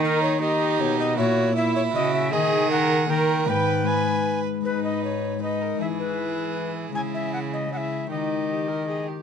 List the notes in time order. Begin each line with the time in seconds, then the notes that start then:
Already playing: D#3 A#3 D#4 A#4
0.03 D#4 A#4
0.22 C#5
0.38 A#3 D#4 G4 A#4 D#5
0.79 B2 C#5
0.99 D#5
1.15 A#2 A#3 E4 F#4 A#4 C#5
1.55 E4 E5
1.76 C#5
1.94 C#3 F#4 D#5
2.15 E5
2.29 D#3 A#3 D#4 G#4 D#5
2.71 A#4 F#5
3.06 D#3 A#3 D#4 A#4 G5
3.10 D#3 A#4
3.45 G#2 G#3 D#4 B4 G5
3.49 G#2
3.84 G#3 D#4 B4 G#5
4.61 G#2 G#3 D#4 B4
4.66 D#4
4.84 D#5
5.04 C#5
5.38 G#3 D#4 B4
5.42 B4 D#5
5.62 A#4
5.77 E3 G#3 E4 G#4 B4 E5
6.00 B4
6.92 C#3 G#3 E4 G#4 C#5 G#5
6.96 E4
7.14 E5
7.33 F#5
7.53 D#5
7.68 G#3 E4 C#5
7.72 G#4 F#5
7.77 E5
8.07 D#3 D#4 G4 A#4 D#5
8.49 G4
8.68 A#4
8.88 G#4
9.08 G4